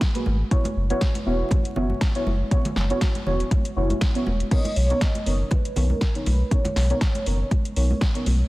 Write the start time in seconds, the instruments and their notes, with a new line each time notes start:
0.01 kick, snare, closed hi-hat
0.15 synth stab A#3 F#4 G#4 B4, closed hi-hat
0.26 sub bass G#1, high conga
0.51 synth stab B3 E4 F#4 C#5, kick, closed hi-hat
0.65 closed hi-hat, high conga
0.76 sub bass F#1
0.90 synth stab B3 E4 F#4 C#5, closed hi-hat
1.01 kick, snare, closed hi-hat
1.15 closed hi-hat, high conga
1.26 sub bass E1, synth stab B3 E4 F#4 C#5
1.51 kick, closed hi-hat, high conga, low conga
1.65 closed hi-hat
1.76 sub bass F#1, synth stab B3 E4 F#4 C#5, low conga
1.90 high conga
2.01 kick, snare, closed hi-hat
2.15 synth stab B3 E4 F#4 C#5, closed hi-hat
2.26 sub bass F#1, high conga
2.51 synth stab B3 E4 F#4 C#5, kick, closed hi-hat
2.65 closed hi-hat, high conga, low conga
2.76 sub bass F#1, snare
2.90 synth stab B3 E4 F#4 C#5, closed hi-hat
3.01 kick, snare, closed hi-hat
3.15 closed hi-hat, high conga
3.26 sub bass E1, synth stab B3 E4 F#4 C#5, low conga
3.40 closed hi-hat
3.51 kick, closed hi-hat, high conga
3.65 closed hi-hat
3.76 sub bass F#1, synth stab B3 E4 F#4 C#5
3.90 closed hi-hat, high conga
4.01 kick, snare, closed hi-hat
4.15 synth stab B3 E4 F#4 C#5, closed hi-hat
4.26 sub bass E1, high conga
4.40 closed hi-hat
4.51 synth stab B3 D#4 A#4 C#5, soft synth lead D#5, kick, closed hi-hat, crash
4.65 closed hi-hat, high conga
4.76 sub bass B1, soft synth lead C#5, open hi-hat
4.90 synth stab B3 D#4 A#4 C#5, closed hi-hat
5.01 soft synth lead D#5, kick, snare, closed hi-hat
5.15 closed hi-hat, high conga
5.26 sub bass F#1, synth stab B3 D#4 A#4 C#5, open hi-hat
5.51 soft synth lead B4, kick, closed hi-hat, high conga, low conga
5.65 closed hi-hat
5.76 sub bass B1, synth stab B3 D#4 A#4 C#5, open hi-hat, low conga
5.90 soft synth lead A#4, high conga
6.01 kick, snare, closed hi-hat
6.15 synth stab B3 D#4 A#4 C#5, closed hi-hat
6.26 sub bass B1, soft synth lead B4, open hi-hat, high conga
6.51 synth stab B3 D#4 A#4 C#5, soft synth lead C#5, kick, closed hi-hat
6.65 closed hi-hat, high conga, low conga
6.76 sub bass B1, snare, open hi-hat
6.90 synth stab B3 D#4 A#4 C#5, closed hi-hat
7.01 kick, snare, closed hi-hat
7.15 closed hi-hat, high conga
7.26 sub bass F#1, synth stab B3 D#4 A#4 C#5, open hi-hat
7.51 kick, closed hi-hat, high conga
7.65 closed hi-hat
7.76 sub bass B1, synth stab B3 D#4 A#4 C#5, open hi-hat
7.90 high conga
8.01 kick, snare, closed hi-hat
8.15 synth stab B3 D#4 A#4 C#5, closed hi-hat
8.26 sub bass B1, open hi-hat, high conga